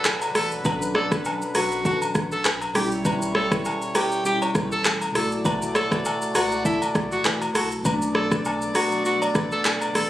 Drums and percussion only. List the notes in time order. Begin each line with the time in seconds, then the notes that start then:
0.05 cross-stick, clap, low woodblock, shaker
0.22 high agogo, shaker
0.35 cross-stick, open hi-hat
0.52 shaker
0.65 kick, high agogo, shaker
0.82 shaker
0.95 cross-stick
1.12 kick, cross-stick, shaker
1.25 high agogo, low woodblock, shaker
1.42 shaker
1.55 cross-stick, open hi-hat, high agogo, shaker
1.72 shaker
1.85 kick, shaker
2.02 high agogo, shaker
2.15 kick, cross-stick, shaker
2.32 shaker
2.45 cross-stick, clap, low woodblock, shaker
2.61 high agogo, shaker
2.75 cross-stick, open hi-hat
2.92 shaker
3.05 kick, high agogo, shaker
3.22 shaker
3.35 cross-stick
3.52 kick, cross-stick, shaker
3.65 high agogo, low woodblock, shaker
3.82 shaker
3.95 cross-stick, open hi-hat, high agogo, shaker
4.12 shaker
4.25 shaker
4.42 high agogo, shaker
4.55 kick, cross-stick, shaker
4.72 shaker
4.85 cross-stick, clap, low woodblock, shaker
5.01 high agogo, shaker
5.15 cross-stick, open hi-hat
5.32 shaker
5.45 kick, high agogo, shaker
5.62 shaker
5.75 cross-stick, shaker
5.92 kick, cross-stick, shaker
6.05 high agogo, low woodblock, shaker
6.22 shaker
6.35 cross-stick, open hi-hat, high agogo, shaker
6.52 shaker
6.65 kick, shaker
6.82 high agogo, shaker
6.95 kick, cross-stick, shaker
7.12 shaker
7.25 cross-stick, clap, low woodblock, shaker
7.42 high agogo, shaker
7.55 cross-stick, open hi-hat, shaker
7.72 shaker
7.85 kick, high agogo, shaker
8.02 shaker
8.15 cross-stick
8.32 kick, cross-stick, shaker
8.45 high agogo, low woodblock, shaker
8.62 shaker
8.75 cross-stick, open hi-hat, high agogo, shaker
8.92 shaker
9.05 shaker
9.22 high agogo, shaker
9.35 kick, cross-stick, shaker
9.52 shaker
9.65 cross-stick, clap, low woodblock, shaker
9.81 high agogo, shaker
9.95 cross-stick, open hi-hat